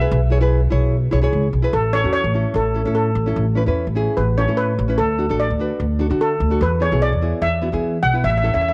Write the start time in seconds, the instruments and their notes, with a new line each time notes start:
Already playing: steel pan E5
0.00 nylon-string guitar E4 G#4 B4
0.12 upright bass B1
0.30 nylon-string guitar E4 G#4 C#5
0.41 nylon-string guitar E4 G#4 B4
0.70 upright bass B1, nylon-string guitar E4 G#4 C#5
1.11 upright bass B1, nylon-string guitar E4 G#4 C#5
1.22 nylon-string guitar E4 G#4 C#5
1.33 upright bass C#2
1.53 upright bass B1
1.62 nylon-string guitar E4 G#4 B4
1.73 upright bass A1, steel pan A4
1.93 nylon-string guitar C#4 E4 A4, steel pan C#5
2.04 upright bass E2, nylon-string guitar C#4 E4 F#4
2.13 steel pan C#5
2.24 upright bass A1
2.34 nylon-string guitar C#4 E4 A4
2.54 upright bass A1, steel pan A4
2.74 nylon-string guitar C#4 E4 A4
2.85 upright bass A2, nylon-string guitar C#4 E4 A4
2.95 steel pan A4
3.15 upright bass A1
3.26 nylon-string guitar C#4 E4 A4
3.36 upright bass A1
3.55 nylon-string guitar C#4 E4 B4
3.66 upright bass E2, nylon-string guitar C#4 E4 B4
3.87 upright bass A1
3.95 nylon-string guitar C#4 E4 G#4
4.17 upright bass A1, steel pan B4
4.37 nylon-string guitar C#4 E4 A4, steel pan C#5
4.48 upright bass A2, nylon-string guitar C#4 E4 A4
4.57 steel pan B4
4.79 upright bass A1
4.88 nylon-string guitar C#4 E4 B4
4.98 upright bass D2, steel pan A4
5.18 nylon-string guitar D4 F#4 A4
5.29 upright bass A1, nylon-string guitar D4 F#4 A4
5.40 steel pan D5
5.50 upright bass D2
5.59 nylon-string guitar D4 F#4 B4
5.80 upright bass D2
5.99 nylon-string guitar D4 F#4 A4
6.10 upright bass D3, nylon-string guitar D4 F#4 A4
6.21 steel pan A4
6.40 upright bass D2
6.50 nylon-string guitar D4 F#4 A4
6.61 upright bass E2, steel pan B4
6.80 nylon-string guitar B3 E4 G#4, steel pan C#5
6.91 upright bass B1, nylon-string guitar B3 E4 G#4
7.02 steel pan D5
7.13 upright bass E2
7.21 nylon-string guitar B3 E4 G#4
7.42 upright bass E2, steel pan E5
7.62 nylon-string guitar B3 E4 F#4
7.72 upright bass E3, nylon-string guitar B3 E4 G#4
8.03 upright bass B1, steel pan F#5
8.13 nylon-string guitar B3 E4 B4
8.24 upright bass A1, steel pan E5
8.30 steel pan E5
8.38 steel pan E5
8.42 nylon-string guitar C#4 E4 A4, steel pan E5
8.53 upright bass E2, nylon-string guitar C#4 E4 A4, steel pan E5
8.62 steel pan E5
8.69 steel pan E5